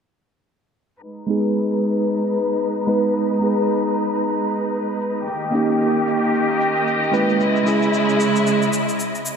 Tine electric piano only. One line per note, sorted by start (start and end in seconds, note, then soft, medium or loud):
1.27 2.84 G#3 medium
1.27 2.85 B3 medium
1.27 2.86 D#4 medium
1.27 2.86 G#4 medium
2.87 3.38 G#3 medium
2.87 3.38 B3 medium
2.87 3.39 D#4 medium
2.87 3.39 B4 medium
3.39 5.25 G#3 medium
3.39 5.25 B3 medium
3.39 5.26 D#4 medium
3.39 5.27 G#4 medium
5.51 7.09 A#3 medium
5.51 7.10 C#4 medium
5.51 7.11 D#4 medium
5.55 7.11 G4 medium
7.12 7.63 G#3 medium
7.12 7.63 C#4 medium
7.12 7.63 E4 medium
7.12 7.64 B4 medium
7.64 8.69 G#3 medium
7.64 8.70 C#4 medium
7.64 8.70 E4 medium
7.68 8.71 G#4 medium